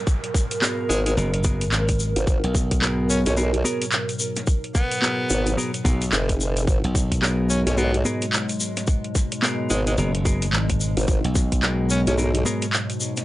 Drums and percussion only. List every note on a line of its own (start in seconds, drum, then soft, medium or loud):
0.07 kick loud
0.07 shaker medium
0.24 closed hi-hat soft
0.34 kick loud
0.34 snare soft
0.34 shaker loud
0.51 closed hi-hat medium
0.51 shaker soft
0.62 clap loud
0.62 shaker medium
0.90 shaker medium
1.06 closed hi-hat medium
1.06 shaker soft
1.18 shaker medium
1.34 closed hi-hat medium
1.44 kick loud
1.44 shaker loud
1.61 closed hi-hat medium
1.61 shaker soft
1.72 clap loud
1.72 shaker medium
1.89 kick medium
1.89 closed hi-hat medium
1.89 shaker soft
1.99 shaker medium
2.16 closed hi-hat medium
2.16 shaker soft
2.27 kick loud
2.27 shaker medium
2.44 closed hi-hat soft
2.55 kick loud
2.55 snare soft
2.55 shaker loud
2.71 kick medium
2.71 closed hi-hat medium
2.71 shaker soft
2.82 clap loud
2.82 shaker medium
3.10 shaker medium
3.26 closed hi-hat medium
3.26 shaker soft
3.37 shaker medium
3.54 closed hi-hat medium
3.65 shaker medium
3.82 closed hi-hat medium
3.82 shaker soft
3.92 clap loud
3.92 shaker medium
4.09 closed hi-hat medium
4.09 shaker soft
4.19 shaker loud
4.36 snare soft
4.36 closed hi-hat medium
4.36 shaker soft
4.47 kick loud
4.47 shaker medium
4.64 closed hi-hat soft
4.75 kick loud
4.75 snare soft
4.75 shaker medium
4.91 closed hi-hat medium
4.91 shaker soft
5.02 clap loud
5.02 shaker medium
5.30 shaker loud
5.46 closed hi-hat medium
5.46 shaker soft
5.58 shaker medium
5.74 closed hi-hat soft
5.74 shaker soft
5.85 kick loud
5.85 shaker medium
6.02 closed hi-hat medium
6.02 shaker soft
6.12 clap loud
6.12 shaker medium
6.29 kick medium
6.29 closed hi-hat medium
6.29 shaker soft
6.40 shaker loud
6.57 closed hi-hat medium
6.57 shaker soft
6.67 kick loud
6.67 shaker medium
6.84 closed hi-hat soft
6.95 kick loud
6.95 snare soft
6.95 shaker medium
7.12 kick medium
7.12 closed hi-hat medium
7.12 shaker soft
7.22 clap loud
7.22 shaker medium
7.50 shaker loud
7.67 closed hi-hat medium
7.67 shaker soft
7.78 shaker medium
7.94 closed hi-hat soft
8.05 shaker medium
8.22 closed hi-hat medium
8.22 shaker soft
8.33 clap loud
8.33 shaker medium
8.49 closed hi-hat soft
8.49 shaker soft
8.60 shaker loud
8.77 snare soft
8.77 closed hi-hat medium
8.77 shaker soft
8.87 kick loud
8.87 shaker medium
9.04 closed hi-hat soft
9.15 kick loud
9.15 snare soft
9.15 shaker medium
9.32 closed hi-hat medium
9.32 shaker soft
9.43 clap loud
9.43 shaker medium
9.70 shaker medium
9.87 closed hi-hat medium
9.87 shaker soft
9.98 shaker medium
10.15 closed hi-hat soft
10.25 kick loud
10.25 shaker medium
10.42 closed hi-hat medium
10.42 shaker soft
10.53 clap loud
10.53 shaker soft
10.70 kick medium
10.70 closed hi-hat medium
10.70 shaker soft
10.80 shaker medium
10.97 closed hi-hat medium
10.97 shaker soft
11.08 kick loud
11.08 shaker medium
11.24 closed hi-hat soft
11.35 kick loud
11.35 snare soft
11.35 shaker medium
11.52 kick medium
11.52 closed hi-hat medium
11.52 shaker soft
11.63 clap loud
11.63 shaker soft
11.90 shaker medium
12.07 closed hi-hat medium
12.07 shaker soft
12.18 shaker medium
12.35 closed hi-hat medium
12.46 shaker medium
12.62 closed hi-hat medium
12.62 shaker soft
12.73 clap loud
12.73 shaker soft
12.90 closed hi-hat medium
12.90 shaker soft
13.00 shaker medium
13.16 snare soft
13.16 closed hi-hat medium
13.16 shaker soft